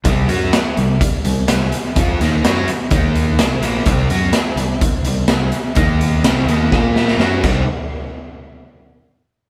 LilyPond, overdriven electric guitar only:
\new Staff \with { instrumentName = "Overdriven electric guitar" } { \clef bass \time 4/4 \key c \minor \tempo 4 = 126 <c g c'>8 <fis des' fis'>8 r8 <c g>8 r8 <c g>8 <c g>8 r8 | <f c' f'>8 <ees bes ees'>8 <fis des' fis'>8 r8 <ees bes ees'>4 <c g>8 <bes, f bes>8 | <c g c'>8 <fis des' fis'>8 r8 <c g>8 r8 <c g>8 <c g>8 r8 | <ees bes ees'>4 <c g c'>8 <ees bes ees'>8 <bes f' bes'>4 <fis cis' fis'>8 <c g c' ees'>8 |
r1 | }